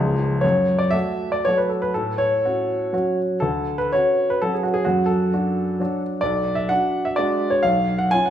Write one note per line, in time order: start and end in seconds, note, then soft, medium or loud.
0.00 0.42 C#1 medium
0.00 0.42 C#2 medium
0.00 0.40 F3 soft
0.00 0.40 G#3 soft
0.00 0.41 G#4 soft
0.41 0.92 F#2 medium
0.41 0.79 C#5 medium
0.79 0.93 D5 medium
0.91 1.40 A3 soft
0.91 1.40 F#4 soft
0.91 1.31 E5 medium
1.32 1.44 D5 medium
1.45 1.90 F#3 soft
1.45 1.91 A3 soft
1.45 1.57 C#5 medium
1.49 1.91 F#4 medium
1.58 1.69 B4 medium
1.69 1.81 A4 medium
1.82 1.93 B4 medium
1.94 2.44 A2 medium
1.94 2.18 A4 medium
2.18 3.18 C#5 medium
2.45 2.90 C#4 soft
2.45 2.90 F#4 medium
2.93 3.38 F#3 soft
2.93 3.38 C#4 soft
2.93 3.38 F#4 medium
3.40 3.90 D2 medium
3.40 3.78 A4 medium
3.78 3.91 B4 medium
3.92 4.38 C#4 soft
3.92 4.39 F#4 medium
3.92 4.30 C#5 medium
4.30 4.41 B4 medium
4.42 4.83 F#3 soft
4.42 4.83 C#4 soft
4.42 4.62 F#4 soft
4.42 4.53 A4 medium
4.54 4.65 G#4 medium
4.63 4.75 F#4 medium
4.74 4.85 G#4 medium
4.85 5.31 F#2 medium
4.85 5.08 F#4 medium
5.06 6.01 A4 medium
5.34 5.77 D4 soft
5.34 5.77 F#4 soft
5.80 6.20 F#3 soft
5.80 6.20 D4 soft
5.80 6.21 F#4 medium
6.21 6.69 B1 medium
6.21 6.57 D5 medium
6.55 6.69 E5 medium
6.69 7.14 D4 soft
6.69 7.14 F#4 medium
6.69 7.05 F#5 medium
7.05 7.17 E5 medium
7.16 7.60 G#3 soft
7.16 7.60 D4 soft
7.16 7.60 F#4 medium
7.16 7.51 D5 medium
7.50 7.63 C#5 medium
7.63 8.11 B1 medium
7.63 7.99 F5 medium
7.99 8.11 F#5 medium
8.11 8.30 C#4 soft
8.11 8.30 F4 medium
8.11 8.24 G#5 medium
8.26 8.30 F#5 medium